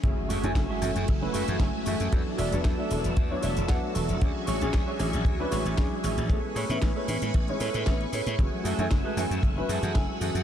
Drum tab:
HH |x-oxx-oxx-oxx-ox|x-oxx-oxx-oxx-ox|x-oxx-oxx-oxx-ox|x-oxx-oxxxoxxxox|
SH |x-xxx-xxx-xxx-xx|x-xxx-xxx-xxx-xx|x-xxx-xxx-xxx-xx|x-xxx-xxx-xxx-xx|
SD |----o-r-----o---|--r-o-------o---|----o-r-----o---|--r-o-------o---|
BD |o---o---o---o---|o---o---o---o---|o---o---o---o---|o---o---o---o---|

HH |x-oxx-oxx-oxx-ox|
SH |x-xxx-xxx-xxx-xx|
SD |----o-r-----o---|
BD |o---o---o---o---|